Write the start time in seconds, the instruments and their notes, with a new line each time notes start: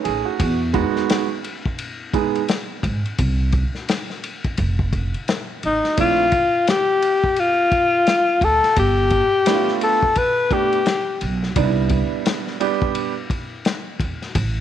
Already playing: grand piano A3 C#4 D#4
0.04 upright bass A1, grand piano G#4, ride
0.25 grand piano F#4
0.40 upright bass E2, kick, ride
0.73 grand piano G#3 B3 D#4 F#4, kick, ride
0.96 snare
1.10 snare, hi-hat pedal, ride
1.44 ride
1.66 kick
1.78 ride
2.13 grand piano G#3 B3 D#4 G#4, kick, ride
2.35 ride
2.48 snare, hi-hat pedal, ride
2.83 upright bass G#2, kick, ride
3.05 ride
3.18 upright bass C2, kick, ride
3.52 kick, ride
3.75 snare
3.88 snare, hi-hat pedal, ride
4.10 snare
4.24 ride
4.44 kick, ride
4.57 upright bass F1, kick, ride
4.79 kick
4.93 kick, ride
5.14 ride
5.28 snare, hi-hat pedal, ride
5.63 upright bass A1, alto saxophone D#4, ride
5.85 snare, ride
5.97 upright bass A#1, grand piano A3 C4 D4 E4, alto saxophone F4, kick, ride
6.32 kick, ride
6.67 alto saxophone G4, snare, hi-hat pedal, ride
7.02 ride
7.24 kick
7.36 alto saxophone F4, ride
7.72 kick, ride
8.07 snare, hi-hat pedal, ride
8.41 upright bass D2, alto saxophone A4, kick, ride
8.64 snare, ride
8.76 upright bass G1, alto saxophone G4, kick, ride
9.10 kick, ride
9.46 grand piano A3 B3 D4 E4, snare, hi-hat pedal, ride
9.54 grand piano F4
9.68 snare
9.81 alto saxophone A4, ride
10.03 kick
10.15 alto saxophone B4, kick, ride
10.51 grand piano A3 B3 D4 G4, alto saxophone G4, kick, ride
10.72 ride
10.86 snare, hi-hat pedal, ride
11.21 upright bass B1, ride
11.43 snare
11.56 upright bass C2, grand piano G3 B3 D4 D#4, kick, ride
11.63 grand piano E4
11.89 kick, ride
12.26 snare, hi-hat pedal, ride
12.47 snare
12.60 grand piano G3 B3 D4 G4, ride
12.82 kick
12.95 ride
13.30 kick, ride
13.65 snare, hi-hat pedal, ride
14.00 upright bass E2, kick, ride
14.22 snare, ride
14.35 upright bass A1, kick, ride